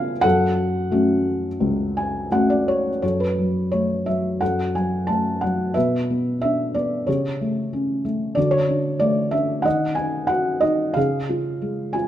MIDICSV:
0, 0, Header, 1, 2, 480
1, 0, Start_track
1, 0, Key_signature, 3, "minor"
1, 0, Tempo, 678733
1, 172, Time_signature, 4, 2, 24, 8
1, 1136, Tempo, 706714
1, 2576, Tempo, 674157
1, 4016, Tempo, 652174
1, 8675, End_track
2, 0, Start_track
2, 0, Title_t, "Felt piano"
2, 0, Program_c, 0, 0
2, 0, Control_c, 0, 64, 127
2, 0, Note_on_c, 0, 49, 64
2, 0, Note_on_c, 0, 59, 47
2, 0, Note_on_c, 0, 61, 51
2, 0, Note_on_c, 0, 65, 53
2, 0, Note_on_c, 0, 77, 94
2, 0, Note_on_c, 0, 80, 100
2, 81, Note_off_c, 0, 59, 0
2, 84, Note_off_c, 0, 61, 0
2, 86, Note_off_c, 0, 65, 0
2, 146, Note_off_c, 0, 49, 0
2, 151, Note_on_c, 0, 78, 103
2, 168, Note_on_c, 0, 69, 85
2, 174, Note_off_c, 0, 77, 0
2, 177, Note_on_c, 0, 42, 67
2, 180, Control_c, 0, 64, 0
2, 184, Note_off_c, 0, 80, 0
2, 310, Control_c, 0, 64, 127
2, 646, Note_on_c, 0, 57, 53
2, 651, Note_on_c, 0, 61, 47
2, 651, Note_on_c, 0, 66, 58
2, 1037, Note_off_c, 0, 57, 0
2, 1040, Note_off_c, 0, 61, 0
2, 1040, Note_off_c, 0, 66, 0
2, 1134, Note_on_c, 0, 37, 68
2, 1382, Note_on_c, 0, 80, 70
2, 1579, Note_off_c, 0, 78, 0
2, 1587, Note_off_c, 0, 69, 0
2, 1604, Note_off_c, 0, 80, 0
2, 1617, Note_on_c, 0, 57, 54
2, 1619, Note_on_c, 0, 61, 47
2, 1622, Note_on_c, 0, 78, 68
2, 1625, Note_on_c, 0, 66, 57
2, 1733, Note_off_c, 0, 78, 0
2, 1742, Note_on_c, 0, 74, 67
2, 1853, Note_off_c, 0, 74, 0
2, 1865, Note_on_c, 0, 73, 72
2, 2006, Note_off_c, 0, 57, 0
2, 2007, Note_off_c, 0, 61, 0
2, 2010, Note_off_c, 0, 66, 0
2, 2074, Note_off_c, 0, 37, 0
2, 2078, Note_off_c, 0, 42, 0
2, 2088, Note_off_c, 0, 73, 0
2, 2098, Note_on_c, 0, 73, 59
2, 2103, Note_on_c, 0, 42, 50
2, 2109, Note_on_c, 0, 69, 40
2, 2110, Control_c, 0, 64, 0
2, 2212, Note_off_c, 0, 73, 0
2, 2220, Note_on_c, 0, 71, 61
2, 2230, Control_c, 0, 64, 127
2, 2345, Note_on_c, 0, 54, 31
2, 2551, Note_off_c, 0, 71, 0
2, 2568, Note_on_c, 0, 73, 66
2, 2580, Note_on_c, 0, 57, 41
2, 2815, Note_on_c, 0, 76, 59
2, 2817, Note_off_c, 0, 54, 0
2, 2824, Note_off_c, 0, 73, 0
2, 2827, Note_on_c, 0, 54, 39
2, 3035, Note_off_c, 0, 42, 0
2, 3038, Note_off_c, 0, 69, 0
2, 3049, Note_off_c, 0, 57, 0
2, 3059, Note_off_c, 0, 54, 0
2, 3060, Note_on_c, 0, 78, 71
2, 3067, Note_off_c, 0, 76, 0
2, 3067, Note_on_c, 0, 69, 46
2, 3072, Control_c, 0, 64, 0
2, 3072, Note_on_c, 0, 42, 49
2, 3178, Control_c, 0, 64, 127
2, 3284, Note_off_c, 0, 78, 0
2, 3306, Note_on_c, 0, 54, 38
2, 3306, Note_on_c, 0, 80, 64
2, 3532, Note_on_c, 0, 81, 74
2, 3547, Note_on_c, 0, 57, 40
2, 3549, Note_off_c, 0, 80, 0
2, 3776, Note_on_c, 0, 78, 66
2, 3780, Note_off_c, 0, 54, 0
2, 3781, Note_off_c, 0, 81, 0
2, 3791, Note_on_c, 0, 54, 45
2, 3991, Note_off_c, 0, 69, 0
2, 3994, Note_off_c, 0, 42, 0
2, 4000, Note_off_c, 0, 78, 0
2, 4007, Note_off_c, 0, 57, 0
2, 4010, Note_on_c, 0, 76, 70
2, 4017, Note_off_c, 0, 54, 0
2, 4019, Note_on_c, 0, 71, 51
2, 4027, Control_c, 0, 64, 0
2, 4030, Note_on_c, 0, 47, 58
2, 4156, Control_c, 0, 64, 127
2, 4277, Note_on_c, 0, 59, 38
2, 4474, Note_off_c, 0, 76, 0
2, 4506, Note_on_c, 0, 76, 75
2, 4518, Note_on_c, 0, 62, 43
2, 4745, Note_off_c, 0, 59, 0
2, 4749, Note_on_c, 0, 74, 66
2, 4755, Note_off_c, 0, 76, 0
2, 4756, Note_on_c, 0, 59, 41
2, 4962, Note_off_c, 0, 71, 0
2, 4967, Note_off_c, 0, 47, 0
2, 4982, Note_off_c, 0, 62, 0
2, 4986, Note_on_c, 0, 73, 57
2, 4987, Note_off_c, 0, 59, 0
2, 4993, Note_on_c, 0, 49, 55
2, 4997, Note_on_c, 0, 67, 43
2, 4998, Note_off_c, 0, 74, 0
2, 5000, Control_c, 0, 64, 0
2, 5109, Control_c, 0, 64, 127
2, 5239, Note_on_c, 0, 57, 44
2, 5475, Note_on_c, 0, 61, 42
2, 5674, Note_off_c, 0, 73, 0
2, 5697, Note_off_c, 0, 57, 0
2, 5708, Note_on_c, 0, 57, 42
2, 5914, Note_off_c, 0, 49, 0
2, 5916, Note_off_c, 0, 67, 0
2, 5930, Note_off_c, 0, 61, 0
2, 5930, Note_on_c, 0, 74, 74
2, 5936, Note_off_c, 0, 57, 0
2, 5945, Note_on_c, 0, 50, 61
2, 5951, Control_c, 0, 64, 0
2, 5951, Note_on_c, 0, 66, 51
2, 6048, Note_on_c, 0, 73, 83
2, 6058, Note_off_c, 0, 74, 0
2, 6081, Control_c, 0, 64, 127
2, 6179, Note_on_c, 0, 62, 40
2, 6385, Note_off_c, 0, 73, 0
2, 6405, Note_on_c, 0, 74, 84
2, 6414, Note_on_c, 0, 57, 49
2, 6637, Note_off_c, 0, 62, 0
2, 6639, Note_on_c, 0, 76, 77
2, 6648, Note_on_c, 0, 62, 48
2, 6655, Note_off_c, 0, 74, 0
2, 6862, Note_off_c, 0, 50, 0
2, 6864, Note_off_c, 0, 66, 0
2, 6865, Note_off_c, 0, 76, 0
2, 6867, Note_on_c, 0, 78, 76
2, 6874, Note_off_c, 0, 57, 0
2, 6879, Note_off_c, 0, 62, 0
2, 6882, Note_on_c, 0, 51, 56
2, 6890, Note_on_c, 0, 75, 59
2, 6899, Control_c, 0, 64, 0
2, 7020, Control_c, 0, 64, 127
2, 7098, Note_off_c, 0, 78, 0
2, 7107, Note_on_c, 0, 80, 72
2, 7123, Note_on_c, 0, 63, 45
2, 7344, Note_on_c, 0, 78, 80
2, 7359, Note_on_c, 0, 66, 52
2, 7366, Note_off_c, 0, 80, 0
2, 7579, Note_off_c, 0, 75, 0
2, 7590, Note_on_c, 0, 75, 74
2, 7593, Note_off_c, 0, 63, 0
2, 7604, Note_on_c, 0, 63, 48
2, 7608, Note_off_c, 0, 78, 0
2, 7823, Note_off_c, 0, 51, 0
2, 7833, Note_on_c, 0, 77, 80
2, 7837, Note_off_c, 0, 66, 0
2, 7844, Note_off_c, 0, 63, 0
2, 7851, Note_on_c, 0, 49, 61
2, 7853, Note_off_c, 0, 75, 0
2, 7854, Note_on_c, 0, 68, 62
2, 7864, Control_c, 0, 64, 0
2, 8011, Control_c, 0, 64, 127
2, 8096, Note_on_c, 0, 65, 40
2, 8334, Note_on_c, 0, 56, 43
2, 8564, Note_on_c, 0, 80, 68
2, 8566, Note_off_c, 0, 65, 0
2, 8577, Note_on_c, 0, 65, 46
2, 8586, Note_off_c, 0, 77, 0
2, 8675, Note_off_c, 0, 49, 0
2, 8675, Note_off_c, 0, 56, 0
2, 8675, Note_off_c, 0, 65, 0
2, 8675, Note_off_c, 0, 68, 0
2, 8675, Note_off_c, 0, 80, 0
2, 8675, End_track
0, 0, End_of_file